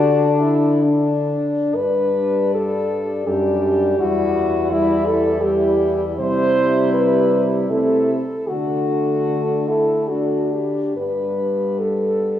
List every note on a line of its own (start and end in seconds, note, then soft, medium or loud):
0.00 1.33 D3 medium
0.00 1.29 D4 medium
0.00 1.37 D4 medium
0.00 0.39 F#4 medium
0.39 0.85 E4 medium
0.84 1.77 D4 medium
1.75 3.28 G2 medium
1.75 3.23 G3 medium
1.75 3.23 D4 medium
1.75 2.54 B4 loud
2.55 3.29 A4 medium
3.27 3.99 F#2 medium
3.27 3.98 G3 medium
3.27 3.97 D4 medium
3.27 4.01 G4 medium
3.99 6.15 E2 medium
3.99 4.70 G3 medium
3.99 4.70 E4 medium
3.99 4.74 F#4 loud
4.72 5.40 G3 medium
4.72 5.40 E4 medium
4.72 5.08 E4 medium
5.07 5.42 A4 medium
5.41 6.17 G3 medium
5.41 6.17 E4 medium
5.41 6.02 G4 medium
6.19 7.67 C3 medium
6.19 7.72 G3 medium
6.19 7.67 E4 medium
6.19 6.91 C5 loud
6.93 7.42 B4 medium
7.70 8.20 C3 medium
7.70 8.21 A3 medium
7.70 8.20 E4 medium
7.70 8.50 A4 medium
8.49 10.55 D3 medium
8.49 10.05 A3 medium
8.49 9.17 D4 medium
8.49 9.70 F#4 medium
9.29 9.70 D4 medium
9.68 10.11 E4 medium
9.68 10.10 A4 medium
10.08 10.59 A3 soft
10.08 10.96 D4 medium
10.08 10.53 F#4 medium
10.52 10.97 G4 medium
10.97 12.40 G2 soft
10.97 12.40 G3 medium
10.97 12.40 B3 medium
10.97 11.81 B4 medium
11.79 12.40 A4 medium